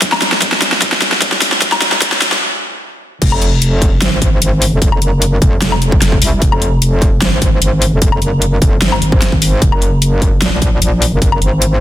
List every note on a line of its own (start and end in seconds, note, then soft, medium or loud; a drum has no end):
0.02 kick loud
0.02 snare medium
0.02 closed hi-hat medium
0.12 snare medium
0.12 low woodblock medium
0.22 snare loud
0.22 closed hi-hat medium
0.32 snare medium
0.42 kick medium
0.42 snare medium
0.42 closed hi-hat medium
0.52 snare medium
0.62 snare loud
0.62 closed hi-hat medium
0.72 snare medium
0.82 kick loud
0.82 snare medium
0.82 closed hi-hat medium
0.92 snare medium
1.02 snare medium
1.02 closed hi-hat medium
1.12 snare medium
1.22 kick medium
1.22 snare loud
1.22 closed hi-hat medium
1.32 snare medium
1.42 snare loud
1.42 open hi-hat loud
1.52 snare medium
1.62 kick loud
1.62 snare loud
1.62 closed hi-hat medium
1.72 snare medium
1.72 low woodblock medium
1.82 snare loud
1.82 closed hi-hat medium
1.92 snare medium
2.02 kick loud
2.02 snare loud
2.02 closed hi-hat medium
2.12 snare medium
2.22 snare loud
2.22 closed hi-hat medium
2.32 snare medium
3.22 4.00 F1 loud
3.22 kick loud
3.22 closed hi-hat medium
3.22 crash loud
3.32 low woodblock medium
3.42 closed hi-hat medium
3.62 closed hi-hat medium
3.82 kick loud
3.82 closed hi-hat medium
4.02 4.40 G#1 loud
4.02 snare loud
4.02 closed hi-hat medium
4.22 kick medium
4.22 closed hi-hat medium
4.42 4.71 G#1 medium
4.42 closed hi-hat medium
4.62 open hi-hat loud
4.72 5.00 F1 loud
4.82 kick loud
4.82 closed hi-hat medium
4.92 low woodblock medium
5.02 5.40 F#1 loud
5.02 closed hi-hat medium
5.22 closed hi-hat medium
5.42 5.60 F1 medium
5.42 kick loud
5.42 closed hi-hat medium
5.62 6.20 F1 loud
5.62 snare loud
5.62 closed hi-hat medium
5.72 low woodblock medium
5.82 closed hi-hat medium
5.92 kick loud
6.02 snare medium
6.02 closed hi-hat medium
6.12 kick medium
6.22 6.40 C2 loud
6.22 open hi-hat loud
6.42 7.20 F1 loud
6.42 kick loud
6.42 closed hi-hat medium
6.52 low woodblock medium
6.62 closed hi-hat medium
6.82 closed hi-hat medium
7.02 kick loud
7.02 closed hi-hat medium
7.22 7.60 G#1 loud
7.22 snare loud
7.22 closed hi-hat medium
7.42 kick medium
7.42 closed hi-hat medium
7.62 7.91 G#1 medium
7.62 closed hi-hat medium
7.82 open hi-hat medium
7.92 8.20 F1 loud
8.02 kick loud
8.02 closed hi-hat medium
8.12 low woodblock medium
8.22 8.60 F#1 loud
8.22 closed hi-hat medium
8.42 closed hi-hat medium
8.62 8.80 F1 medium
8.62 kick loud
8.62 closed hi-hat medium
8.82 9.00 G#1 loud
8.82 snare loud
8.82 closed hi-hat medium
8.92 low woodblock medium
9.02 9.60 G#1 medium
9.02 closed hi-hat medium
9.12 kick loud
9.22 snare medium
9.22 closed hi-hat medium
9.32 kick medium
9.42 open hi-hat medium
9.62 10.40 F#1 loud
9.62 kick loud
9.62 closed hi-hat medium
9.72 low woodblock medium
9.82 closed hi-hat medium
10.02 closed hi-hat medium
10.22 kick loud
10.22 closed hi-hat medium
10.42 10.80 A#1 loud
10.42 snare loud
10.42 closed hi-hat medium
10.62 kick medium
10.62 closed hi-hat medium
10.82 11.11 A#1 medium
10.82 closed hi-hat medium
11.02 open hi-hat medium
11.12 11.40 F#1 loud
11.22 kick loud
11.22 closed hi-hat medium
11.32 low woodblock medium
11.42 11.80 G#1 loud
11.42 closed hi-hat medium
11.62 closed hi-hat medium